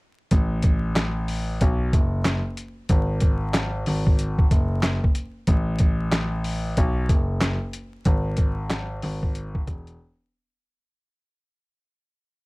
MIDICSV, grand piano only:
0, 0, Header, 1, 2, 480
1, 0, Start_track
1, 0, Tempo, 645161
1, 234, Time_signature, 4, 2, 24, 8
1, 9268, End_track
2, 0, Start_track
2, 0, Title_t, "Grand piano"
2, 0, Program_c, 0, 0
2, 237, Note_on_c, 0, 33, 110
2, 1166, Note_off_c, 0, 33, 0
2, 1203, Note_on_c, 0, 35, 104
2, 1407, Note_off_c, 0, 35, 0
2, 1440, Note_on_c, 0, 30, 89
2, 1775, Note_off_c, 0, 30, 0
2, 2157, Note_on_c, 0, 32, 102
2, 2846, Note_off_c, 0, 32, 0
2, 2880, Note_on_c, 0, 32, 100
2, 3293, Note_off_c, 0, 32, 0
2, 3359, Note_on_c, 0, 30, 90
2, 3695, Note_off_c, 0, 30, 0
2, 4077, Note_on_c, 0, 33, 114
2, 5006, Note_off_c, 0, 33, 0
2, 5043, Note_on_c, 0, 35, 106
2, 5247, Note_off_c, 0, 35, 0
2, 5280, Note_on_c, 0, 30, 89
2, 5615, Note_off_c, 0, 30, 0
2, 5997, Note_on_c, 0, 32, 111
2, 6686, Note_off_c, 0, 32, 0
2, 6720, Note_on_c, 0, 32, 103
2, 7132, Note_off_c, 0, 32, 0
2, 7200, Note_on_c, 0, 28, 96
2, 7405, Note_off_c, 0, 28, 0
2, 9268, End_track
0, 0, End_of_file